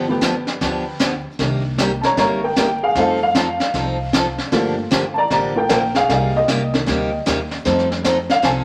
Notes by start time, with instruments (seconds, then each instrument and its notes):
Already playing: upright bass G1
0.08 upright piano F3 A3 B3 G4
0.21 steel-string acoustic guitar D3 F3 B3 D4 G4, kick, snare, hi-hat pedal
0.47 snare
0.61 upright bass D2, steel-string acoustic guitar D3 F3 B3 D4 G4, brush sweep, kick, snare
1.00 steel-string acoustic guitar D3 F3 B3 D4 G4, kick, snare, hi-hat pedal
1.39 upright bass C2, steel-string acoustic guitar C3 G3 A#3 D#4 G4, upright piano D#3 A#3 D4, brush sweep, kick, snare
1.78 steel-string acoustic guitar C3 G3 A#3 D#4 G4, kick, snare, hi-hat pedal
2.01 upright piano C#5 A5, snare
2.05 upright piano A#5
2.17 upright bass G1, steel-string acoustic guitar C3 G3 A#3 D#4 G4, upright piano C#5 A#5, brush sweep, kick, snare
2.44 upright piano A#4 G5
2.56 steel-string acoustic guitar C3 G3 A#3 D#4 G4, upright piano A#4 G5, kick, snare, hi-hat pedal
2.83 upright piano G#4 F5
2.95 upright bass F2, steel-string acoustic guitar F3 C4 D#4 A4, upright piano G3 A3 D#4 A4 F5, brush sweep, kick, snare
3.23 upright piano F5
3.35 steel-string acoustic guitar F3 C4 D#4 A4, kick, snare, hi-hat pedal
3.60 snare
3.74 upright bass C2, steel-string acoustic guitar F3 C4 D#4 A4, brush sweep, kick, snare
4.13 steel-string acoustic guitar F3 C4 D#4 A4, kick, snare, hi-hat pedal
4.38 snare
4.52 upright bass G2, steel-string acoustic guitar D3 F3 A#3 D4 G4, upright piano A3 A#3 F4, brush sweep, kick, snare
4.91 upright bass G1, steel-string acoustic guitar D3 F3 A#3 D4 G4, kick, snare, hi-hat pedal
5.14 upright piano D5 A5
5.18 upright piano A#5
5.30 upright bass A1, steel-string acoustic guitar D3 F3 A#3 D4 G4, upright piano D5 A#5, brush sweep, kick, snare
5.55 upright piano A3 A#3 F4 A#4 G5
5.69 upright bass A#1, steel-string acoustic guitar D3 F3 A#3 D4 G4, upright piano A#4 G5, kick, snare, hi-hat pedal
5.95 upright piano G#4 F5, snare
6.09 upright bass C2, steel-string acoustic guitar C3 G3 A#3 D#4 G4, upright piano A#3 D#4 G#4 D5 F5, brush sweep, kick, snare
6.36 upright piano G4 D#5
6.48 upright bass C2, steel-string acoustic guitar C3 G3 A#3 D#4 G4, kick, snare, hi-hat pedal
6.73 upright piano D#3 A#3 D4, snare
6.86 upright bass D2, steel-string acoustic guitar C3 G3 A#3 D#4 G4, brush sweep, kick, snare
7.26 upright bass D#2, steel-string acoustic guitar C3 G3 A#3 D#4 G4, kick, snare, hi-hat pedal
7.51 snare
7.65 upright bass F2, steel-string acoustic guitar F3 C4 D#4 A4, upright piano G3 A3 D#4, brush sweep, kick, snare
7.79 snare
7.92 snare
8.04 steel-string acoustic guitar F3 C4 D#4 A4, kick, snare, hi-hat pedal
8.30 upright piano F5, snare
8.42 upright bass C2, steel-string acoustic guitar F3 C4 D#4 A4, upright piano G#5, brush sweep, kick, snare